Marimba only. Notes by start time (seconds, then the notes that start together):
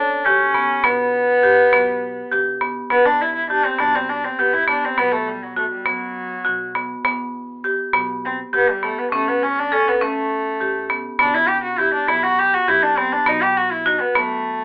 0.26 G4
0.54 B3
0.84 B3
1.43 G4
1.73 B3
2.32 G4
2.61 B3
2.90 B3
3.50 G4
3.79 B3
4.39 G4
4.68 B3
4.98 B3
5.56 F#4
5.86 B3
6.45 F#4
6.75 B3
7.05 B3
7.64 G4
7.93 B3
8.53 G4
8.83 B3
9.12 C#4
9.72 A4
10.02 C#4
10.60 G4
10.90 B3
11.19 B3
11.78 G4
12.09 B3
12.68 G4
12.97 B3
13.26 B3
13.86 F#4
14.15 B3